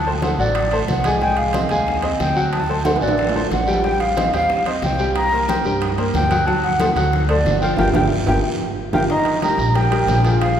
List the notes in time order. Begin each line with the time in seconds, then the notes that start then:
Already playing: D2 A5
0.06 A3 A4 C5, high bongo, high conga
0.22 A3 A4 C5 F#5, high bongo, high conga, high timbale, short guiro
0.38 A1 F#3 F#4 D5 F#5, high bongo, short guiro
0.55 high bongo, high conga, high timbale, long guiro
0.71 A3 A4 C5, high conga, high timbale
0.88 C2 F#5, high bongo, low bongo, high conga, low timbale, short guiro
1.04 G#3 G#4 G#5, high bongo, high conga, high timbale, short guiro
1.21 G#3 G#4 G5 G#5, high bongo, high conga, long guiro
1.37 F5, high conga, high timbale
1.53 C4 C5 D#5, high bongo, high conga, high timbale, short guiro
1.69 D#2 G#3 G#4 F5 G#5, high conga, high timbale, short guiro
1.87 high bongo, high conga, long guiro
2.02 C4 C5 D#5, high conga, high timbale
2.20 D2 G5, high bongo, low bongo, high conga, short guiro
2.36 F#3 F#4 F#5, high conga, short guiro
2.52 A5, high bongo, high conga, high timbale, long guiro
2.69 A3 A4 C5, high bongo, high conga
2.85 A3 A4 C5 F#5, high bongo, high conga, high timbale, short guiro
2.96 high timbale
3.01 A1 F#3 F#4 D5 F#5, high bongo, short guiro
3.08 high timbale
3.18 high bongo, high conga, high timbale, long guiro
3.29 low timbale
3.35 A3 A4 C5, high conga
3.51 A1 F#5, high bongo, low bongo, high conga, low timbale, short guiro
3.67 G3 G4 G5, high bongo, high conga, short guiro
3.74 low timbale
3.84 G3 G4 G5, high bongo, high conga, long guiro
4.00 F5, high conga, high timbale
4.16 C4 C5 D#5, high bongo, high conga, high timbale, short guiro
4.33 D#2 G3 G4 F5 G5, high conga, high timbale, short guiro
4.49 high bongo, high conga, long guiro
4.66 C4 C5 D#5, high conga, high timbale
4.82 C2 G5, high bongo, low bongo, high conga, short guiro
4.99 G3 G4 G5, high conga, short guiro
5.16 A#5, high bongo, high conga, high timbale, long guiro
5.32 A#3 A#4 C5, high bongo, high conga
5.48 A#3 A#4 C5 G5, high bongo, high conga, high timbale, short guiro
5.64 G2 G3 G4 G5, high bongo, short guiro
5.81 high bongo, high conga, high timbale, long guiro
5.98 A#3 A#4 C5, high conga, high timbale
6.13 D2 G5, high bongo, low bongo, high conga, low timbale, short guiro
6.30 F#3 F#4 F#5, high bongo, high conga, high timbale, short guiro
6.47 F#3 F#4 F#5 A5, high bongo, high conga, long guiro
6.63 F#5, high conga, high timbale
6.80 A3 A4 C5, high bongo, high conga, high timbale, short guiro
6.95 D2 F#3 F#4 F#5, high conga, high timbale, short guiro
7.13 high bongo, high conga, long guiro
7.28 A3 A4 C5 D5, high conga, high timbale
7.45 G1, high bongo, low bongo, high conga, low timbale, short guiro
7.60 F3 F4 F5 G5, high conga, short guiro
7.77 G1 F4 G4 A#4 G5, low bongo, high conga, high timbale, long guiro
7.94 G1 F4 G4 A#4 G5, low bongo, high conga, high timbale, long guiro
8.27 G1 F4 G4 A#4 G5, low bongo, high conga, high timbale, long guiro
8.93 G1 F4 G4 A#4 G5, low bongo, high conga, high timbale, long guiro
9.10 D#3 D#4 D#5 A#5, high bongo, high conga, long guiro
9.25 high conga, high timbale
9.42 G3 G4 A#4 A#5, high bongo, high conga, high timbale, short guiro
9.58 A#1, short guiro
9.75 G3 G4 A#4 G5, high bongo, high conga, high timbale, long guiro
9.92 G3 G4 A#4, high conga, high timbale
10.07 A#1, high bongo, low bongo, high conga, low timbale, short guiro
10.25 F3 F4 G#4, high timbale, short guiro
10.41 F5, high bongo, high conga, high timbale, long guiro